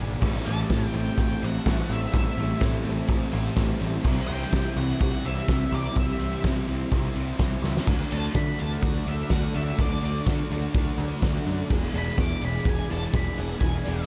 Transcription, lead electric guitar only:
0.46 0.95 A5 loud
0.96 1.19 G5 medium
1.20 1.44 G5 medium
1.45 1.93 F#5 medium
1.93 2.15 E5 medium
2.16 2.60 E5 medium
4.28 4.77 G5 loud
4.78 5.00 F#5 medium
5.01 5.25 F#5 medium
5.26 5.74 E5 loud
5.75 5.96 D5 medium
5.97 6.42 E5 medium
8.13 8.37 A5 medium
8.35 8.60 B5 loud
8.59 8.82 A5 medium
8.82 9.07 F#5 loud
9.08 9.32 E5 medium
9.31 9.56 F#5 medium
9.55 9.79 E5 medium
9.81 10.24 D5 medium
11.98 12.20 B5 loud
12.20 12.43 D6 loud
12.45 12.68 B5 loud
12.70 12.91 G#5 medium
12.91 13.15 A5 medium
13.16 13.39 B5 medium
13.38 13.59 F#5 medium
13.59 14.05 G#5 medium

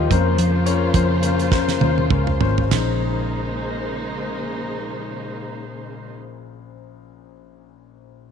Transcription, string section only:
0.00 2.69 F3 medium
0.00 2.69 A#3 medium
0.10 2.70 C#3 medium
0.10 2.69 F4 medium
0.10 2.69 C5 medium
2.71 6.15 C#3 medium
2.71 6.14 G#3 medium
2.71 6.14 A#3 soft
2.71 6.15 D#4 medium
2.71 6.15 C5 soft

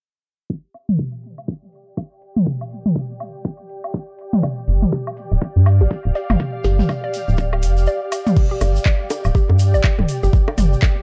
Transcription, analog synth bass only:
4.68 4.85 G1 medium
5.32 5.38 D1 loud
5.56 5.82 G2 medium
5.81 5.87 G1 medium
6.05 6.12 D1 loud
6.30 6.36 G1 loud
6.64 6.82 G1 medium
7.28 7.64 D1 medium
7.63 7.87 F1 loud
8.61 8.79 G1 medium
9.25 9.31 D1 loud
9.49 9.76 G2 medium
9.74 9.81 G1 medium
9.99 10.05 D1 loud
10.23 10.30 G1 loud
10.58 10.75 G1 loud

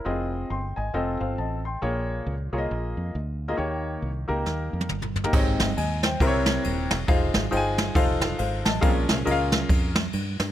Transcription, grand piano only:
0.00 0.31 E4 soft
0.00 0.30 A#4 medium
0.05 0.55 C4 medium
0.05 0.55 F4 medium
0.05 0.56 G#4 medium
0.05 0.50 D#5 medium
0.50 0.76 G5 soft
0.50 0.75 C6 medium
0.76 0.93 D#5 soft
0.76 1.18 G#5 medium
0.94 1.59 C4 medium
0.94 1.59 F4 medium
0.94 1.59 A4 medium
0.94 1.21 D#5 medium
1.20 1.37 C5 soft
1.20 1.37 F5 medium
1.38 1.64 D#5 medium
1.38 1.63 A5 medium
1.65 2.07 G5 soft
1.65 2.07 C6 medium
1.82 2.49 A#2 medium
1.82 2.32 A#3 medium
1.82 2.32 F4 medium
1.82 2.32 G#4 medium
1.82 2.32 C#5 medium
2.53 3.13 A#3 medium
2.53 3.14 F4 medium
2.53 3.13 G#4 medium
2.53 2.57 C#5 medium
2.58 3.16 D#5 medium
3.48 3.55 A#3 medium
3.48 3.55 F4 medium
3.48 3.55 G#4 medium
3.48 3.55 D#5 medium
3.57 4.24 D#3 medium
3.57 4.07 A#3 medium
3.57 4.07 D#4 medium
3.57 4.08 G4 medium
3.57 4.08 C#5 medium
4.28 4.89 A#3 medium
4.28 4.89 D#4 medium
4.28 4.89 G4 medium
4.28 4.89 A#4 medium
5.24 5.31 A#3 medium
5.24 5.31 D#4 medium
5.24 5.31 G4 medium
5.24 5.31 A#4 medium
5.33 6.00 G#2 medium
5.33 5.68 C4 medium
5.33 5.68 D#4 medium
5.33 5.68 G4 medium
5.33 5.68 G#4 medium
5.33 5.40 C#5 medium
5.39 5.71 D#5 loud
5.77 6.03 D#5 medium
5.77 6.02 G#5 medium
6.04 6.20 C5 medium
6.04 6.45 G5 medium
6.21 6.88 C3 medium
6.21 6.95 C4 medium
6.21 6.95 E4 medium
6.21 6.95 G4 medium
6.21 6.95 A#4 medium
6.21 6.28 C5 medium
6.27 6.98 C#5 loud
7.07 7.43 D#4 medium
7.07 7.43 F4 medium
7.07 7.43 G#4 medium
7.07 7.43 C5 medium
7.07 7.43 F5 medium
7.51 7.93 D#4 medium
7.51 7.94 F4 medium
7.51 7.95 G#4 medium
7.51 7.94 C5 medium
7.51 7.58 G5 medium
7.57 7.98 G#5 loud
7.95 8.69 D#4 loud
7.95 8.69 F4 medium
7.95 8.69 A4 medium
7.95 8.38 C5 medium
7.95 8.37 F5 loud
8.38 8.64 C5 medium
8.38 8.64 F5 medium
8.65 9.07 D#5 medium
8.65 9.07 A5 medium
8.81 9.48 A#2 medium
8.81 8.88 C4 medium
8.81 9.17 F4 medium
8.81 9.17 G#4 medium
8.81 9.17 A#4 medium
8.81 9.17 F5 loud
8.86 9.19 C#4 medium
9.25 9.95 C#4 medium
9.25 9.95 F4 medium
9.25 9.95 G#4 medium
9.25 9.95 A#4 medium
9.25 9.33 D#5 medium
9.31 9.98 F5 loud

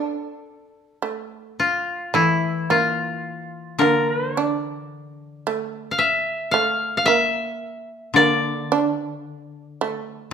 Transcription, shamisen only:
0.00 1.03 D4 medium
1.02 2.13 A3 soft
2.14 2.70 A3 soft
2.70 3.80 A#3 medium
3.81 4.36 A#3 soft
4.37 5.46 D4 medium
5.47 6.53 A3 medium
6.54 7.07 A3 medium
7.08 8.16 A#3 medium
8.18 8.71 A#3 medium
8.72 9.80 D4 medium
9.81 10.33 A3 medium

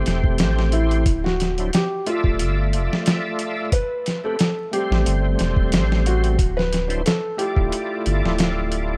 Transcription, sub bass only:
0.07 0.42 E1 medium
0.40 1.08 A1 medium
1.06 1.70 D1 medium
2.25 2.41 D1 medium
2.40 2.75 G1 loud
2.73 2.89 F1 medium
4.91 5.04 A1 loud
5.07 5.36 G1 loud
5.40 5.75 E1 medium
5.74 6.37 A1 medium
6.39 7.03 D1 medium
7.57 7.70 D1 loud
8.06 8.22 G1 loud
8.24 8.97 D1 medium

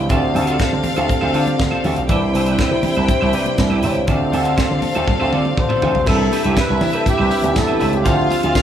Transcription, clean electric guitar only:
0.09 0.30 C4 medium
0.09 0.22 F4 medium
0.09 0.21 A4 medium
0.09 0.21 E5 loud
0.22 muted clean electric guitar stroke soft
0.34 0.47 C4 medium
0.34 0.47 F4 medium
0.34 0.47 A4 medium
0.34 0.46 E5 medium
0.47 0.58 C4 medium
0.47 0.59 F4 medium
0.47 0.59 A4 medium
0.47 0.60 E5 medium
0.59 0.80 C4 medium
0.59 0.72 F4 medium
0.59 0.71 A4 medium
0.59 0.70 E5 medium
0.72 muted clean electric guitar stroke soft
0.84 muted clean electric guitar stroke soft
0.97 1.07 C4 medium
0.97 1.08 F4 medium
0.97 1.09 A4 medium
0.97 1.09 E5 medium
1.09 muted clean electric guitar stroke medium
1.21 1.32 C4 medium
1.21 1.34 F4 medium
1.21 1.34 A4 medium
1.21 1.35 E5 medium
1.34 1.50 C4 medium
1.34 1.46 F4 medium
1.34 1.46 A4 medium
1.34 1.45 E5 medium
1.46 muted clean electric guitar stroke soft
1.59 muted clean electric guitar stroke soft
1.71 1.83 C4 medium
1.71 1.84 F4 medium
1.71 1.84 A4 medium
1.71 1.85 E5 medium
1.84 2.00 C4 medium
1.84 1.96 F4 medium
1.84 1.96 A4 medium
1.84 1.95 E5 medium
1.96 muted clean electric guitar stroke soft
2.09 2.29 E4 loud
2.09 2.22 G4 medium
2.09 2.22 B4 medium
2.09 2.21 E5 loud
2.22 muted clean electric guitar stroke soft
2.34 2.48 E4 medium
2.34 2.47 G4 medium
2.34 2.47 B4 medium
2.34 2.46 E5 medium
2.47 2.58 E4 medium
2.47 2.59 G4 medium
2.47 2.59 B4 medium
2.47 2.60 E5 medium
2.59 2.79 E4 medium
2.59 2.72 G4 medium
2.59 2.71 B4 medium
2.59 2.70 E5 medium
2.72 muted clean electric guitar stroke soft
2.84 muted clean electric guitar stroke soft
2.97 3.07 E4 soft
2.97 3.08 G4 medium
2.97 3.08 B4 medium
2.97 3.08 E5 medium
3.08 muted clean electric guitar stroke soft
3.21 3.32 E4 medium
3.21 3.33 G4 medium
3.21 3.33 B4 medium
3.21 3.34 E5 medium
3.33 3.50 E4 medium
3.33 3.46 G4 medium
3.33 3.46 B4 medium
3.33 3.45 E5 medium
3.46 muted clean electric guitar stroke soft
3.58 muted clean electric guitar stroke soft
3.70 3.81 E4 soft
3.70 3.82 G4 medium
3.70 3.82 B4 medium
3.70 3.83 E5 medium
3.82 4.03 E4 medium
3.82 3.95 G4 medium
3.82 3.95 B4 medium
3.82 3.94 E5 medium
3.95 muted clean electric guitar stroke soft
4.07 4.27 C4 medium
4.07 4.19 F4 medium
4.07 4.19 A4 medium
4.07 4.18 E5 medium
4.19 muted clean electric guitar stroke soft
4.32 4.45 C4 medium
4.32 4.44 F4 medium
4.32 4.44 A4 medium
4.32 4.43 E5 medium
4.44 4.55 C4 soft
4.44 4.56 F4 medium
4.44 4.56 A4 medium
4.44 4.57 E5 medium
4.56 4.77 C4 medium
4.56 4.69 F4 medium
4.56 4.69 A4 medium
4.56 4.68 E5 medium
4.69 muted clean electric guitar stroke soft
4.82 muted clean electric guitar stroke soft
4.95 5.06 C4 medium
4.95 5.06 F4 medium
4.95 5.07 A4 medium
4.95 5.07 E5 medium
5.07 muted clean electric guitar stroke soft
5.20 5.31 C4 medium
5.20 5.32 F4 medium
5.20 5.32 A4 medium
5.20 5.33 E5 medium
5.32 5.49 C4 medium
5.32 5.45 F4 medium
5.32 5.45 A4 medium
5.32 5.44 E5 medium
5.45 muted clean electric guitar stroke soft
5.57 muted clean electric guitar stroke soft
5.69 5.80 C4 medium
5.69 5.81 F4 soft
5.69 5.82 A4 medium
5.69 5.82 E5 medium
5.82 6.02 C4 medium
5.82 5.94 F4 medium
5.82 5.94 A4 medium
5.82 5.93 E5 medium
5.94 muted clean electric guitar stroke soft
6.06 6.26 E4 medium
6.06 6.19 G4 medium
6.06 6.19 B4 medium
6.06 6.18 E5 loud
6.19 muted clean electric guitar stroke soft
6.31 6.45 E4 medium
6.31 6.45 G4 medium
6.31 6.44 B4 medium
6.31 6.43 E5 medium
6.44 6.55 E4 medium
6.44 6.56 G4 medium
6.44 6.56 B4 medium
6.44 6.57 E5 medium
6.56 6.76 E4 medium
6.56 6.69 G4 medium
6.56 6.69 B4 medium
6.56 6.68 E5 medium
6.69 muted clean electric guitar stroke soft
6.81 muted clean electric guitar stroke soft
6.93 7.05 E4 medium
6.93 7.05 G4 medium
6.93 7.06 B4 medium
6.93 7.06 E5 medium
7.06 muted clean electric guitar stroke soft
7.18 7.29 E4 medium
7.18 7.30 G4 medium
7.18 7.30 B4 medium
7.18 7.31 E5 medium
7.30 7.47 E4 medium
7.30 7.43 G4 medium
7.30 7.42 B4 medium
7.30 7.41 E5 medium
7.43 muted clean electric guitar stroke soft
7.55 muted clean electric guitar stroke medium
7.67 7.78 E4 soft
7.67 7.79 G4 soft
7.67 7.79 B4 medium
7.67 7.80 E5 medium
7.80 8.00 E4 medium
7.80 7.93 G4 medium
7.80 7.92 B4 medium
7.80 7.91 E5 medium
7.92 muted clean electric guitar stroke soft
8.04 8.25 F4 medium
8.04 8.17 A4 loud
8.04 8.17 C5 medium
8.04 8.16 F5 medium
8.17 muted clean electric guitar stroke soft
8.30 8.43 F4 medium
8.30 8.42 A4 medium
8.30 8.42 C5 medium
8.30 8.41 F5 medium
8.42 8.53 F4 soft
8.42 8.54 A4 soft
8.42 8.55 C5 medium
8.42 8.55 F5 medium
8.54 8.62 F4 medium
8.54 8.62 A4 medium
8.54 8.62 C5 medium
8.54 8.62 F5 loud

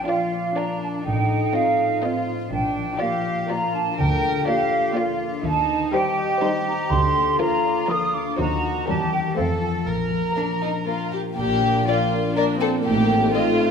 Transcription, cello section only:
0.07 0.55 F4 soft
0.56 1.04 D4 soft
1.05 2.03 D#4 soft
2.03 2.52 F4 soft
2.52 3.00 D4 soft
3.00 3.49 G4 soft
3.49 3.98 F4 soft
3.98 4.46 A#4 medium
4.47 4.94 G4 medium
4.96 5.44 F4 soft
5.44 5.93 D#4 medium
5.93 7.40 G4 medium
7.40 8.36 F4 medium
8.38 8.86 F#4 medium
8.87 9.36 G4 soft
9.36 9.85 A4 medium
9.87 11.13 A#4 soft
11.38 11.79 A#2 soft
12.86 13.26 A2 medium

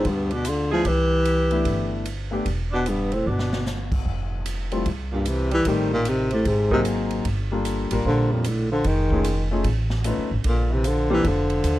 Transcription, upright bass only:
0.05 0.81 D2 medium
0.85 1.62 C2 medium
1.65 2.42 G1 medium
2.46 3.22 E1 medium
3.26 4.02 G1 medium
4.06 4.82 F1 medium
4.86 5.62 C2 medium
5.66 6.42 A1 medium
6.45 7.21 G#1 medium
7.25 7.87 G1 medium
7.91 8.04 G#1 medium
8.05 8.81 A#1 medium
8.85 9.61 F1 medium
9.64 10.14 A1 medium
10.18 10.30 C#2 medium
10.31 10.44 G#1 medium
10.44 11.20 A#1 medium
11.25 11.62 F1 medium
11.64 11.79 D#2 medium

